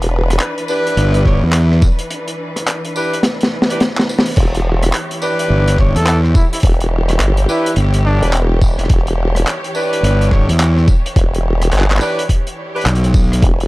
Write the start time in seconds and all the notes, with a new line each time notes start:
Already playing: E1 E3 D4 B4
0.02 closed hi-hat
0.30 cross-stick, closed hi-hat
0.40 clap, closed hi-hat
0.58 closed hi-hat
0.68 D4 E4 G4 B4, tambourine
0.87 closed hi-hat
0.97 G1, closed hi-hat
1.14 closed hi-hat
1.25 D4 E4 G4 C#5, kick, cross-stick
1.43 E2
1.53 clap, closed hi-hat
1.72 cross-stick
1.82 kick, tambourine
1.99 closed hi-hat
2.10 closed hi-hat
2.28 closed hi-hat
2.56 cross-stick, closed hi-hat
2.67 clap, closed hi-hat
2.85 closed hi-hat
2.96 D4 E4 G4 B4, tambourine
3.14 closed hi-hat
3.23 snare, closed hi-hat
3.41 snare, closed hi-hat
3.62 snare
3.69 D4 E4 G4 B4, closed hi-hat
3.80 snare, closed hi-hat
3.98 snare, clap
4.09 tambourine
4.19 snare
4.26 closed hi-hat
4.28 closed hi-hat
4.31 closed hi-hat
4.34 closed hi-hat, crash
4.37 E1 G4 C#5, kick, closed hi-hat
4.41 closed hi-hat
4.50 closed hi-hat
4.55 closed hi-hat
4.83 cross-stick, closed hi-hat
4.93 clap, closed hi-hat
5.11 closed hi-hat
5.22 D4 E4 G4 B4, tambourine
5.39 closed hi-hat
5.50 G1
5.68 closed hi-hat
5.78 D4 E4 G4 C#5, kick, cross-stick
5.96 E2 A4, closed hi-hat
6.07 clap, closed hi-hat
6.24 cross-stick
6.35 E4, kick, tambourine
6.52 E4, closed hi-hat
6.60 closed hi-hat
6.63 E1, kick, closed hi-hat
6.73 closed hi-hat
6.80 closed hi-hat
7.09 cross-stick, closed hi-hat
7.20 G1, clap, closed hi-hat
7.37 closed hi-hat
7.48 D4 E4 G4 B4, tambourine
7.66 closed hi-hat
7.76 G1, closed hi-hat
7.94 closed hi-hat
8.05 D4
8.22 E1 D4 E4 G4 B4, closed hi-hat
8.33 clap, closed hi-hat
8.62 kick, tambourine
8.78 E1, cross-stick, closed hi-hat
8.84 cross-stick
8.89 E1, kick, cross-stick, closed hi-hat
8.98 cross-stick
9.07 closed hi-hat
9.35 cross-stick, closed hi-hat
9.47 clap, closed hi-hat
9.64 closed hi-hat
9.75 D4 E4 G4 B4, tambourine
9.93 closed hi-hat
10.03 G1, closed hi-hat
10.21 closed hi-hat
10.31 D4 E4 G4 C#5, kick, cross-stick
10.49 E2, closed hi-hat
10.60 clap, closed hi-hat
10.77 cross-stick
10.88 kick, tambourine
11.06 closed hi-hat
11.16 E1, kick, closed hi-hat
11.34 closed hi-hat
11.62 cross-stick, closed hi-hat
11.72 G1, clap, closed hi-hat
11.79 clap
11.82 clap
11.90 clap
11.97 D4 E4 G4 B4, clap, tambourine
12.19 closed hi-hat
12.29 kick, closed hi-hat
12.47 closed hi-hat
12.75 D4 E4 G4 B4, closed hi-hat
12.81 closed hi-hat
12.86 B1, clap, closed hi-hat
12.95 closed hi-hat
13.04 closed hi-hat
13.14 kick, tambourine
13.32 cross-stick, closed hi-hat
13.42 E1 B4, kick, closed hi-hat
13.60 closed hi-hat